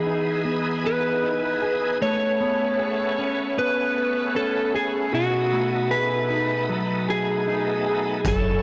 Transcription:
0.00 1.98 E3 medium
0.00 2.01 E3 medium
0.00 0.44 B3 medium
0.00 1.98 B3 medium
0.00 1.98 D#4 medium
0.00 0.42 G#4 medium
0.00 0.84 G#4 medium
0.00 1.98 G#4 medium
0.06 1.22 D#4 medium
0.45 2.40 B3 medium
0.84 1.62 G#4 medium
0.84 1.98 B4 medium
1.23 2.09 D#4 medium
1.62 2.79 G#4 medium
2.01 5.16 A3 medium
2.01 8.21 A3 medium
2.01 5.10 B3 medium
2.01 5.10 C#4 medium
2.01 3.58 C#5 medium
2.40 3.57 B3 medium
2.79 4.74 G#4 medium
3.18 4.34 C#4 medium
3.57 5.52 B3 medium
3.57 4.36 B4 medium
4.35 6.30 C#4 medium
4.35 4.75 A4 medium
4.74 5.55 G#4 medium
4.74 5.14 G#4 medium
5.12 8.25 B2 medium
5.12 8.21 B3 medium
5.12 8.21 D#4 medium
5.12 5.94 F#4 medium
5.52 8.62 A3 soft
5.91 7.07 G#4 medium
5.91 6.65 B4 medium
6.30 7.46 D#4 medium
6.69 8.62 F#3 medium
7.08 7.85 G#4 medium
7.08 8.28 G#4 medium
7.47 8.33 D#4 soft
7.86 8.33 G#4 medium
8.25 8.59 F#1 medium
8.25 8.62 F#2 medium
8.25 8.62 F#3 medium
8.25 8.62 C#4 medium
8.25 8.62 E4 medium
8.25 8.62 A4 medium
8.25 kick medium
8.25 closed hi-hat medium

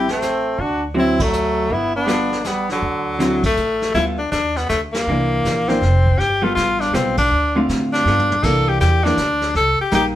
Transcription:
0.00 0.54 A1 medium
0.08 0.62 A3 medium
0.08 0.62 C4 medium
0.08 snare medium
0.22 snare medium
0.22 hi-hat pedal soft
0.59 1.67 D2 medium
0.59 0.83 D4 medium
0.59 0.83 F#4 medium
0.59 brush sweep soft
0.59 kick soft
0.94 1.17 D3 medium
0.94 1.17 F#3 medium
0.94 1.17 C4 medium
0.94 1.23 C4 medium
0.94 1.17 E4 medium
0.99 1.24 E4 medium
1.20 1.72 F#3 medium
1.20 1.74 A3 medium
1.20 kick medium
1.20 ride medium
1.33 hi-hat pedal medium
1.70 2.78 G1 medium
1.70 1.95 B3 medium
1.70 1.95 E4 medium
1.70 brush sweep soft
1.70 kick soft
1.96 2.48 B3 medium
1.96 2.48 D4 medium
2.07 2.29 G3 soft
2.07 2.29 B3 medium
2.07 2.30 F4 medium
2.07 2.30 A4 medium
2.07 snare medium
2.07 hi-hat pedal medium
2.32 snare soft
2.44 2.70 G3 medium
2.44 2.70 B3 medium
2.44 snare medium
2.44 hi-hat pedal medium
2.69 3.54 D3 medium
2.69 3.41 F#3 medium
2.69 snare soft
2.82 3.53 D2 medium
2.82 brush sweep soft
2.82 kick soft
3.19 3.41 D3 medium
3.19 3.41 F#3 medium
3.19 3.41 C4 medium
3.19 3.42 E4 medium
3.19 snare medium
3.19 hi-hat pedal medium
3.43 3.92 A3 medium
3.43 kick medium
3.43 ride medium
3.56 3.92 A1 medium
3.56 hi-hat pedal soft
3.81 snare soft
3.94 4.31 D2 medium
3.94 4.16 G3 medium
3.94 4.17 B3 medium
3.94 4.06 E4 medium
3.94 4.17 F4 medium
3.94 4.17 A4 medium
3.94 brush sweep soft
3.94 kick soft
3.94 snare soft
4.18 4.31 D4 medium
4.31 4.68 D#2 medium
4.31 4.58 D4 medium
4.31 kick soft
4.31 snare medium
4.31 hi-hat pedal soft
4.56 4.69 B3 medium
4.56 snare soft
4.69 5.06 D2 medium
4.69 4.80 A3 medium
4.69 kick soft
4.69 snare medium
4.69 hi-hat pedal medium
4.93 5.70 A#3 medium
4.93 snare medium
4.93 ride medium
5.06 5.43 C2 medium
5.06 5.64 E3 soft
5.06 5.65 A#3 medium
5.06 5.65 D4 medium
5.06 brush sweep soft
5.45 5.81 A#1 medium
5.45 kick soft
5.45 snare medium
5.45 hi-hat pedal soft
5.68 5.80 E3 medium
5.68 5.81 A#3 medium
5.68 6.20 C4 medium
5.68 5.81 D4 medium
5.68 snare soft
5.82 6.18 F1 medium
5.82 kick soft
5.82 snare soft
6.06 kick medium
6.19 6.55 G1 medium
6.19 6.45 G4 loud
6.19 brush sweep soft
6.19 kick soft
6.19 snare soft
6.42 6.90 G3 medium
6.42 6.91 B3 medium
6.42 6.91 F4 medium
6.42 6.54 F4 medium
6.42 6.92 A4 medium
6.55 6.93 A1 medium
6.55 6.82 F4 loud
6.55 kick soft
6.55 snare medium
6.55 hi-hat pedal medium
6.80 6.96 D4 medium
6.80 snare soft
6.93 7.30 B1 medium
6.93 7.15 G3 medium
6.93 7.16 B3 medium
6.93 7.18 C4 medium
6.93 7.16 F4 medium
6.93 7.16 A4 medium
6.93 kick soft
6.93 snare medium
6.93 hi-hat pedal medium
7.17 7.60 D4 medium
7.17 kick medium
7.17 ride medium
7.31 7.67 D2 medium
7.31 brush sweep soft
7.56 8.03 D3 medium
7.56 8.04 A3 medium
7.56 8.04 C4 medium
7.56 8.04 F4 medium
7.69 8.05 A2 medium
7.69 kick soft
7.69 snare medium
7.69 hi-hat pedal soft
7.93 8.46 D4 loud
7.93 snare soft
8.05 8.42 G2 medium
8.05 8.28 G3 soft
8.05 8.29 B3 soft
8.05 8.29 F4 medium
8.05 8.29 A4 medium
8.05 snare soft
8.19 mid tom medium
8.32 mid tom medium
8.43 8.79 C2 medium
8.43 9.00 E3 medium
8.43 9.00 A#3 medium
8.43 9.01 D4 medium
8.43 8.70 A4 medium
8.43 brush sweep soft
8.43 kick medium
8.43 snare soft
8.43 crash medium
8.68 8.80 G4 medium
8.80 9.17 E2 medium
8.80 9.06 G4 medium
8.80 kick soft
8.80 snare medium
8.80 hi-hat pedal medium
9.04 9.17 E3 medium
9.04 9.17 A#3 medium
9.04 9.55 D4 loud
9.04 9.17 D4 medium
9.04 snare soft
9.17 9.54 D2 medium
9.17 kick soft
9.17 snare medium
9.17 hi-hat pedal medium
9.41 snare soft
9.54 9.77 C2 medium
9.54 9.78 A4 medium
9.54 brush sweep soft
9.54 kick soft
9.54 snare soft
9.80 9.92 G4 medium
9.80 muted upright bass stroke soft
9.91 10.15 A#1 medium
9.91 10.14 G3 medium
9.91 10.14 A#3 medium
9.91 10.03 D#4 medium
9.91 10.15 D#4 medium
9.91 10.05 G4 medium
9.91 kick soft
9.91 snare medium
9.91 hi-hat pedal medium

